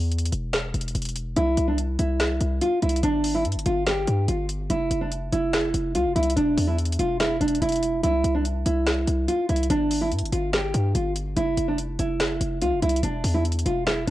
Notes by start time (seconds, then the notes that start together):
Already playing: E2
0.12 closed hi-hat
0.19 closed hi-hat
0.26 closed hi-hat
0.32 E1, closed hi-hat
0.53 finger snap, snare, closed hi-hat
0.74 E1, closed hi-hat
0.81 closed hi-hat
0.88 closed hi-hat
0.95 E1, closed hi-hat
1.02 closed hi-hat
1.05 closed hi-hat
1.09 closed hi-hat
1.16 closed hi-hat
1.36 C2 E4, closed hi-hat
1.57 C2, closed hi-hat
1.68 D4
1.78 closed hi-hat
1.99 C2 E4, closed hi-hat
2.20 finger snap, snare, closed hi-hat
2.41 C2, closed hi-hat
2.62 F4, closed hi-hat
2.82 C2 E4, closed hi-hat
2.89 closed hi-hat
2.96 closed hi-hat
3.03 G1 D4, closed hi-hat
3.24 open hi-hat
3.35 E4
3.45 G2, closed hi-hat
3.52 G1, closed hi-hat
3.59 closed hi-hat
3.66 G1 F4, closed hi-hat
3.87 G4, finger snap, snare, closed hi-hat
4.07 G2, closed hi-hat
4.28 G1 F4, closed hi-hat
4.49 closed hi-hat
4.70 F1 E4, closed hi-hat
4.91 F1, closed hi-hat
5.01 D4
5.11 closed hi-hat
5.32 F1 E4, closed hi-hat
5.53 finger snap, snare, closed hi-hat
5.74 F1, closed hi-hat
5.95 C2 F4, closed hi-hat
6.05 F1
6.16 C2 E4, closed hi-hat
6.23 closed hi-hat
6.30 closed hi-hat
6.36 E1 D4, closed hi-hat
6.57 E2, open hi-hat
6.67 E4
6.78 closed hi-hat
6.85 closed hi-hat
6.92 closed hi-hat
6.99 E1 F4, closed hi-hat
7.20 E4, finger snap, snare, closed hi-hat
7.40 E1 D4, closed hi-hat
7.48 closed hi-hat
7.55 closed hi-hat
7.62 E1 E4, closed hi-hat
7.69 closed hi-hat
7.72 closed hi-hat
7.76 closed hi-hat
7.82 closed hi-hat
8.03 C2 E4, closed hi-hat
8.24 C2, closed hi-hat
8.35 D4
8.45 closed hi-hat
8.66 C2 E4, closed hi-hat
8.87 finger snap, snare, closed hi-hat
9.07 C2, closed hi-hat
9.28 F4, closed hi-hat
9.49 C2 E4, closed hi-hat
9.56 closed hi-hat
9.63 closed hi-hat
9.70 G1 D4, closed hi-hat
9.91 open hi-hat
10.01 E4
10.12 G2, closed hi-hat
10.19 G1, closed hi-hat
10.26 closed hi-hat
10.32 G1 F4, closed hi-hat
10.53 G4, finger snap, snare, closed hi-hat
10.74 G2, closed hi-hat
10.95 G1 F4, closed hi-hat
11.16 closed hi-hat
11.36 F1 E4, closed hi-hat
11.57 F1, closed hi-hat
11.68 D4
11.78 closed hi-hat
11.99 F1 E4, closed hi-hat
12.20 finger snap, snare, closed hi-hat
12.41 F1, closed hi-hat
12.62 C2 F4, closed hi-hat
12.72 F1
12.82 C2 E4, closed hi-hat
12.89 closed hi-hat
12.96 closed hi-hat
13.03 E1 D4, closed hi-hat
13.24 E2, open hi-hat
13.34 E4
13.45 closed hi-hat
13.52 closed hi-hat
13.59 closed hi-hat
13.66 E1 F4, closed hi-hat
13.86 E4, finger snap, snare, closed hi-hat